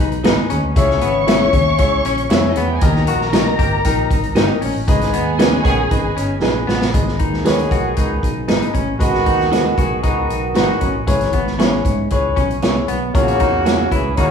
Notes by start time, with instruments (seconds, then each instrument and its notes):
Already playing: clean electric guitar D#4, violin section B4 B5
0.00 fingered electric bass B1
0.12 closed hi-hat
0.23 fingered electric bass G#1, grand piano D#4 G#4 B4 D#5, clean electric guitar D#4 G#4 B4 D#5, snare, closed hi-hat
0.50 fingered electric bass D#2, clean electric guitar C#4, closed hi-hat
0.64 fingered electric bass D2
0.76 fingered electric bass C#2, grand piano C#3 E4 G#4 C#5 E5, violin section C#5 C#6, kick, closed hi-hat
0.90 snare
1.01 fingered electric bass G#1, clean electric guitar B3, closed hi-hat
1.26 clean electric guitar C#4 E4 G#4 C#5 E5, grand piano E4 G#4 C#5 E5, snare, closed hi-hat
1.53 fingered electric bass D#2, kick, closed hi-hat
1.78 fingered electric bass C#2, grand piano E4 G#4 C#5 E5, kick, closed hi-hat
2.05 fingered electric bass A#1, clean electric guitar C#4, closed hi-hat
2.17 closed hi-hat
2.29 fingered electric bass F2, grand piano E4 G#4 C#5 E5, clean electric guitar E4 G#4 C#5 E5, snare, closed hi-hat
2.48 violin section D#4 D#5
2.55 fingered electric bass E2, clean electric guitar B3, violin section E4 E5, closed hi-hat
2.66 violin section G4 G5
2.74 violin section G#4 G#5
2.81 fingered electric bass D#2, grand piano D#3 D#4 G4 A#4 D#5, violin section A#4 A#5, kick, closed hi-hat
2.96 snare
3.07 fingered electric bass A#1, clean electric guitar F#4, closed hi-hat
3.21 snare
3.33 grand piano D#4 G4 A#4 D#5, clean electric guitar D#4 G4 A#4 D#5, snare, closed hi-hat
3.59 fingered electric bass G1, clean electric guitar G4, kick, closed hi-hat
3.84 fingered electric bass A#1, grand piano D#4 G4 A#4 D#5, clean electric guitar D#4, kick, closed hi-hat
4.11 fingered electric bass G#1, kick, closed hi-hat
4.23 closed hi-hat
4.35 fingered electric bass G1, clean electric guitar D#4 G4 A#4 D#5, grand piano D#4 G4 A#4 D#5, snare, closed hi-hat
4.61 fingered electric bass A#1, clean electric guitar C#4, open hi-hat
4.76 fingered electric bass A1
4.87 fingered electric bass G#1, grand piano G#2 D#4 G#4 B4 D#5, violin section G#4 G#5, kick, closed hi-hat
5.01 snare, closed hi-hat
5.13 fingered electric bass D#2, clean electric guitar B3, closed hi-hat
5.38 horn section D#3 B3 G#4, clean electric guitar C#4 D#4 G#4 B4 D#5, grand piano D#4 G#4 B4 D#5, snare, closed hi-hat
5.63 fingered electric bass A#1, horn section D#3 B3 G#4, kick, closed hi-hat
5.90 fingered electric bass G#1, grand piano D#4 G#4 B4 D#5, kick, closed hi-hat
6.17 fingered electric bass G1, clean electric guitar C#4, closed hi-hat
6.42 fingered electric bass A#1, grand piano D#4 G#4 B4 D#5, clean electric guitar D#4 G#4 B4 D#5, snare
6.67 fingered electric bass A1, clean electric guitar B3, snare
6.82 snare
6.93 fingered electric bass G#1, grand piano G#2 D#4 G#4 B4 D#5, horn section D#3 B3 G#4, kick, closed hi-hat
7.08 snare
7.19 fingered electric bass D#2, clean electric guitar D#4, kick, closed hi-hat
7.34 snare
7.45 clean electric guitar D#4 G#4 B4 D#5, grand piano D#4 G#4 B4 C#5, snare, closed hi-hat
7.59 closed hi-hat
7.71 fingered electric bass B1, clean electric guitar F#4, kick, closed hi-hat
7.96 fingered electric bass C#2, grand piano D#4 G#4 B4 D#5, clean electric guitar D#4, kick, closed hi-hat
8.23 fingered electric bass B1, kick, closed hi-hat
8.48 fingered electric bass G#1, grand piano D#4 G#4 B4 D#5, clean electric guitar D#4 G#4 B4 D#5, snare, closed hi-hat
8.62 closed hi-hat
8.74 fingered electric bass A#1, clean electric guitar C#4, kick, closed hi-hat
8.88 fingered electric bass A1
8.99 fingered electric bass G#1, grand piano G#2 F#4 G#4 B4 D#5, horn section D#3 B3 F#4, kick, closed hi-hat
9.15 snare
9.26 fingered electric bass D#2, clean electric guitar D#4, kick, closed hi-hat
9.40 snare
9.51 clean electric guitar D#4 F#4 B4 D#5, grand piano F#4 G#4 B4 D#5, snare, closed hi-hat
9.78 fingered electric bass B1, horn section D#3 B3 G#4, clean electric guitar F#4, kick, closed hi-hat
10.03 fingered electric bass C#2, horn section D#3 B3 F#4, clean electric guitar D#4, grand piano F#4 G#4 B4 D#5, kick, closed hi-hat
10.30 fingered electric bass B1, closed hi-hat
10.55 fingered electric bass G#1, horn section D#3 B3 F#4, clean electric guitar D#4 F#4 B4 D#5, grand piano F#4 G#4 B4 D#5, snare, closed hi-hat
10.81 fingered electric bass A#1, clean electric guitar C#4, kick, closed hi-hat
10.95 fingered electric bass A1
11.07 fingered electric bass G#1, grand piano G#2 E4 G#4 B4 C#5, kick, closed hi-hat
11.21 snare, closed hi-hat
11.33 clean electric guitar B3, kick, closed hi-hat
11.47 snare
11.58 clean electric guitar B3 C#4 E4 G#4 C#5, grand piano E4 G#4 B4 C#5, snare, closed hi-hat
11.85 fingered electric bass G#2, kick, closed hi-hat
12.10 fingered electric bass C#2, grand piano E4 G#4 B4 C#5, kick, closed hi-hat
12.36 fingered electric bass B1, clean electric guitar C#4, kick, closed hi-hat
12.50 closed hi-hat
12.62 fingered electric bass C2, clean electric guitar B3 E4 G#4 C#5, grand piano E4 G#4 B4 C#5, snare, closed hi-hat
12.88 fingered electric bass B1, clean electric guitar B3, closed hi-hat
13.14 fingered electric bass A#1, grand piano A#2 E4 G#4 A#4 C#5, horn section C#3 A#3 F#4, kick, closed hi-hat
13.28 closed hi-hat
13.40 fingered electric bass E2, clean electric guitar D#4, kick, closed hi-hat
13.65 clean electric guitar A#3 E4 G#4 C#5, grand piano E4 G#4 A#4 C#5, snare, closed hi-hat
13.91 fingered electric bass C#2, horn section E3 C#4 G#4, clean electric guitar E4, kick, closed hi-hat
14.16 fingered electric bass D#2, horn section C#3 A#3 F#4, clean electric guitar D#4, grand piano E4 G#4 A#4 C#5, kick, closed hi-hat